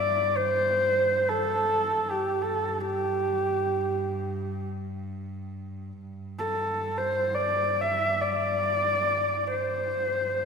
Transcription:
Already playing: cello G2, horsehead fiddle D5
0.36 horsehead fiddle C5
1.28 horsehead fiddle A4
2.02 cello G2
2.10 horsehead fiddle G4
2.42 horsehead fiddle A4
2.80 horsehead fiddle G4
6.01 cello G2
6.39 horsehead fiddle A4
6.97 horsehead fiddle C5
7.34 horsehead fiddle D5
7.81 horsehead fiddle E5
8.21 horsehead fiddle D5
9.51 horsehead fiddle C5
10.02 cello G2

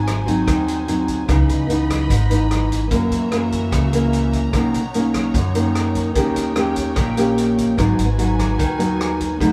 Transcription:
Already playing: upright bass G#1, nylon-string guitar G#2, string section F#4 C5 G#5
0.07 cross-stick, closed hi-hat
0.26 nylon-string guitar F#3 C4 D#4, kick, closed hi-hat
0.47 upright bass D#2, nylon-string guitar D#3, kick, cross-stick, closed hi-hat
0.68 closed hi-hat
0.88 nylon-string guitar F#3 C4 D#4, closed hi-hat
1.08 kick, closed hi-hat
1.28 upright bass C#2, nylon-string guitar C#3 E3 B3 D#4, string section D#5 B5, kick, cross-stick, closed hi-hat
1.49 upright bass C#2, closed hi-hat
1.69 nylon-string guitar E3 B3 D#4, closed hi-hat
1.90 kick, cross-stick, closed hi-hat
2.10 upright bass G#1, nylon-string guitar G#2, kick, closed hi-hat
2.30 nylon-string guitar E3 B3 D#4, closed hi-hat
2.51 cross-stick, closed hi-hat
2.71 kick, closed hi-hat
2.91 nylon-string guitar F#2 E3 A#3 C#4, upright bass F#2, string section F#4 E5 A#5, kick, closed hi-hat
3.11 upright bass F#2, closed hi-hat
3.32 nylon-string guitar E3 A#3 C#4, cross-stick, closed hi-hat
3.52 kick, closed hi-hat
3.72 upright bass C#2, nylon-string guitar C#3, kick, cross-stick, closed hi-hat
3.93 nylon-string guitar E3 A#3 C#4, closed hi-hat
4.13 closed hi-hat
4.33 kick, closed hi-hat
4.52 upright bass B1, nylon-string guitar B2 D#3 A#3 C#4, string section D#4 C#5, kick, cross-stick, closed hi-hat
4.74 upright bass B1, closed hi-hat
4.94 nylon-string guitar D#3 A#3 C#4, closed hi-hat
5.14 kick, cross-stick, closed hi-hat
5.34 upright bass F#2, nylon-string guitar F#2, kick, closed hi-hat
5.55 nylon-string guitar D#3 A#3 C#4, closed hi-hat
5.75 cross-stick, closed hi-hat
5.95 kick, closed hi-hat
6.15 upright bass D#2, nylon-string guitar D#3 A#3 C#4 G4, string section C#5 G5, kick, closed hi-hat
6.36 upright bass D#2, closed hi-hat
6.56 nylon-string guitar A#3 C#4 G4, cross-stick, closed hi-hat
6.76 kick, closed hi-hat
6.96 upright bass A#1, nylon-string guitar A#2, kick, cross-stick, closed hi-hat
7.17 nylon-string guitar A#3 C#4 G4, closed hi-hat
7.38 closed hi-hat
7.58 kick, closed hi-hat
7.77 upright bass G#1, nylon-string guitar G#2 F#3 B3 D#4, string section F#4 B4 G#5, kick, cross-stick, closed hi-hat
7.99 upright bass G#1, closed hi-hat
8.18 nylon-string guitar F#3 B3 D#4, closed hi-hat
8.39 kick, cross-stick, closed hi-hat
8.59 upright bass D#2, nylon-string guitar D#3, kick, closed hi-hat
8.79 nylon-string guitar F#3 B3 D#4, closed hi-hat
9.01 cross-stick, closed hi-hat
9.20 kick, closed hi-hat
9.40 upright bass B1, nylon-string guitar B2 F#3 A3 D#4, string section D#4 B4 A5, kick, closed hi-hat

